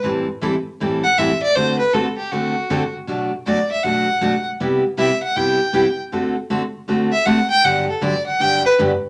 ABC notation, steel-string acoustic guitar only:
X:1
M:4/4
L:1/16
Q:"Swing" 1/4=158
K:Dmix
V:1 name="Steel-string acoustic guitar"
[A,,E,G,CEA]2 z2 [A,,E,G,CEA] z3 [A,,E,G,CEA]2 z2 [A,,E,G,CEA] z3 | [D,A,CFA]2 z2 [D,A,CFA] z3 [D,A,CFA]2 z2 [D,A,CFA] z3 | [B,,F,A,DF]2 z2 [B,,F,A,DF] z3 [B,,F,A,DF]2 z2 [B,,F,A,DF] z3 | [C,G,B,EG]2 z2 [C,G,B,EG] z3 [C,G,B,EG]2 z2 [C,G,B,EG] z3 |
[D,A,CFA]2 z2 [D,A,CFA] z3 [D,A,CFA]2 z2 [D,A,CFA] z3 | [G,,D,F,B,DG]2 z2 [G,,D,F,B,DG] z3 [G,,D,F,B,DG]2 z2 [G,,D,F,B,DG] z3 |]